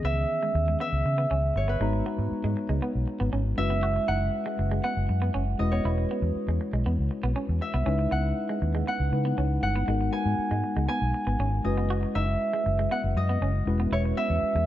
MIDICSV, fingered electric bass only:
0, 0, Header, 1, 3, 480
1, 0, Start_track
1, 0, Tempo, 504626
1, 1724, Time_signature, 4, 2, 24, 8
1, 13946, End_track
2, 0, Start_track
2, 0, Title_t, "Fingered electric bass"
2, 0, Program_c, 0, 33
2, 37, Note_on_c, 0, 37, 92
2, 224, Note_off_c, 0, 37, 0
2, 520, Note_on_c, 0, 39, 82
2, 706, Note_off_c, 0, 39, 0
2, 879, Note_on_c, 0, 37, 79
2, 973, Note_off_c, 0, 37, 0
2, 1002, Note_on_c, 0, 49, 105
2, 1187, Note_off_c, 0, 49, 0
2, 1245, Note_on_c, 0, 37, 83
2, 1429, Note_off_c, 0, 37, 0
2, 1478, Note_on_c, 0, 31, 89
2, 1665, Note_off_c, 0, 31, 0
2, 1715, Note_on_c, 0, 32, 88
2, 1903, Note_off_c, 0, 32, 0
2, 2078, Note_on_c, 0, 44, 102
2, 2173, Note_off_c, 0, 44, 0
2, 2323, Note_on_c, 0, 44, 93
2, 2416, Note_off_c, 0, 44, 0
2, 2561, Note_on_c, 0, 37, 81
2, 2655, Note_off_c, 0, 37, 0
2, 2808, Note_on_c, 0, 35, 79
2, 2899, Note_off_c, 0, 35, 0
2, 3052, Note_on_c, 0, 32, 91
2, 3141, Note_off_c, 0, 32, 0
2, 3169, Note_on_c, 0, 32, 88
2, 3352, Note_off_c, 0, 32, 0
2, 3408, Note_on_c, 0, 30, 102
2, 3776, Note_off_c, 0, 30, 0
2, 3887, Note_on_c, 0, 30, 91
2, 4070, Note_off_c, 0, 30, 0
2, 4366, Note_on_c, 0, 30, 83
2, 4550, Note_off_c, 0, 30, 0
2, 4726, Note_on_c, 0, 30, 78
2, 4817, Note_off_c, 0, 30, 0
2, 4847, Note_on_c, 0, 42, 100
2, 5030, Note_off_c, 0, 42, 0
2, 5087, Note_on_c, 0, 30, 97
2, 5270, Note_off_c, 0, 30, 0
2, 5327, Note_on_c, 0, 28, 100
2, 5510, Note_off_c, 0, 28, 0
2, 5564, Note_on_c, 0, 28, 88
2, 5748, Note_off_c, 0, 28, 0
2, 5918, Note_on_c, 0, 40, 105
2, 6012, Note_off_c, 0, 40, 0
2, 6163, Note_on_c, 0, 40, 86
2, 6255, Note_off_c, 0, 40, 0
2, 6402, Note_on_c, 0, 35, 79
2, 6495, Note_off_c, 0, 35, 0
2, 6527, Note_on_c, 0, 40, 96
2, 6617, Note_off_c, 0, 40, 0
2, 6648, Note_on_c, 0, 37, 79
2, 6738, Note_off_c, 0, 37, 0
2, 6882, Note_on_c, 0, 35, 78
2, 6975, Note_off_c, 0, 35, 0
2, 7124, Note_on_c, 0, 40, 101
2, 7215, Note_off_c, 0, 40, 0
2, 7364, Note_on_c, 0, 36, 88
2, 7456, Note_off_c, 0, 36, 0
2, 7484, Note_on_c, 0, 37, 93
2, 7668, Note_off_c, 0, 37, 0
2, 7723, Note_on_c, 0, 37, 90
2, 7907, Note_off_c, 0, 37, 0
2, 8198, Note_on_c, 0, 39, 84
2, 8384, Note_off_c, 0, 39, 0
2, 8559, Note_on_c, 0, 37, 82
2, 8652, Note_off_c, 0, 37, 0
2, 8677, Note_on_c, 0, 49, 113
2, 8863, Note_off_c, 0, 49, 0
2, 8921, Note_on_c, 0, 37, 92
2, 9106, Note_off_c, 0, 37, 0
2, 9157, Note_on_c, 0, 31, 92
2, 9343, Note_off_c, 0, 31, 0
2, 9398, Note_on_c, 0, 32, 95
2, 9584, Note_off_c, 0, 32, 0
2, 9756, Note_on_c, 0, 44, 92
2, 9850, Note_off_c, 0, 44, 0
2, 10000, Note_on_c, 0, 44, 84
2, 10093, Note_off_c, 0, 44, 0
2, 10239, Note_on_c, 0, 37, 76
2, 10332, Note_off_c, 0, 37, 0
2, 10479, Note_on_c, 0, 35, 85
2, 10572, Note_off_c, 0, 35, 0
2, 10719, Note_on_c, 0, 32, 87
2, 10812, Note_off_c, 0, 32, 0
2, 10838, Note_on_c, 0, 32, 94
2, 11024, Note_off_c, 0, 32, 0
2, 11081, Note_on_c, 0, 30, 90
2, 11451, Note_off_c, 0, 30, 0
2, 11561, Note_on_c, 0, 30, 81
2, 11746, Note_off_c, 0, 30, 0
2, 12043, Note_on_c, 0, 30, 82
2, 12227, Note_off_c, 0, 30, 0
2, 12403, Note_on_c, 0, 30, 93
2, 12495, Note_off_c, 0, 30, 0
2, 12520, Note_on_c, 0, 42, 104
2, 12706, Note_off_c, 0, 42, 0
2, 12758, Note_on_c, 0, 30, 91
2, 12944, Note_off_c, 0, 30, 0
2, 13000, Note_on_c, 0, 28, 93
2, 13186, Note_off_c, 0, 28, 0
2, 13240, Note_on_c, 0, 28, 89
2, 13425, Note_off_c, 0, 28, 0
2, 13602, Note_on_c, 0, 40, 105
2, 13694, Note_off_c, 0, 40, 0
2, 13841, Note_on_c, 0, 40, 99
2, 13934, Note_off_c, 0, 40, 0
2, 13946, End_track
3, 0, Start_track
3, 0, Title_t, "Muted fingered electric bass strokes"
3, 2204, Note_on_c, 9, 29, 51
3, 2299, Note_off_c, 9, 29, 0
3, 6042, Note_on_c, 9, 29, 46
3, 6138, Note_off_c, 9, 29, 0
3, 9880, Note_on_c, 9, 29, 49
3, 9975, Note_off_c, 9, 29, 0
3, 13722, Note_on_c, 9, 29, 54
3, 13817, Note_off_c, 9, 29, 0
3, 13946, End_track
0, 0, End_of_file